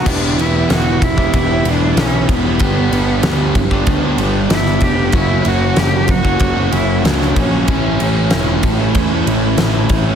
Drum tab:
CC |x---------------|----------------|----------------|----------------|
RD |--x-x-x-x-x-x-x-|x-x-x-x-x-x-x-x-|x-x-x-x-x-x-x-x-|x-x-x-x-x-x-x-x-|
SD |----o-------o---|----o-------oo--|----o-------oo--|----o-------o---|
BD |o-----ooo-----o-|o-----ooo-----o-|o-----ooo-----o-|o-----o-o-----o-|